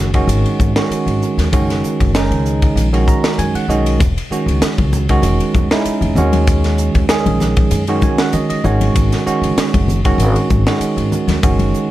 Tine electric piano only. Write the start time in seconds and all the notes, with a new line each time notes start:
0.14 D#3 G#3 C#4 F#4
0.76 D#3 G#3 C#4 F#4
1.52 D#3 G#3 C#4 F#4
2.14 D#3 G#3 C#4 D#4
2.93 D#3 G#3 C#4 F#4
3.08 A#5
3.39 G#5
3.55 F#5
3.69 D#3 G#3 C#4 F#4 D#5
4.31 D#3 G#3 C#4 F#4
5.09 D#3 G#3 C#4 F#4
5.71 G#3 C#4 D#4 E4
6.17 D#3 G#3 C#4 F#4
7.09 D#3 G#3 C#4 G#4
7.88 D#3 G#3 C#4 F#4
8.03 G#5
8.20 F#5
8.33 D#5
8.49 D#5
8.64 D#3 G#3 C#4 F#4 C#5
9.26 D#3 G#3 C#4 F#4
10.05 D#3 G#3 C#4 F#4
10.67 D#3 G#3 C#4 F#4
11.43 D#3 G#3 C#4 F#4